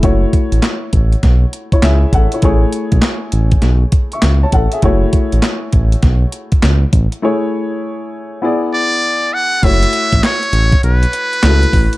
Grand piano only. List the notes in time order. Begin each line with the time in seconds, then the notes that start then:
0.03 A3 E4 F#4 C#5
1.73 E4 C#5
1.84 G#4 E5
2.14 A4 F#5
2.34 E4 C#5
2.43 A3 E4 G#4 C#5
4.13 E5 C#6
4.43 C#5 A5
4.54 A4 F#5
4.73 G#4 E5
4.83 A3 E4 F#4 C#5
7.22 A3 E4 G#4 C#5
8.42 B3 E4 G#4 D5
9.62 A3 E4 F#4 C#5
11.44 A3 E4 F#4 A4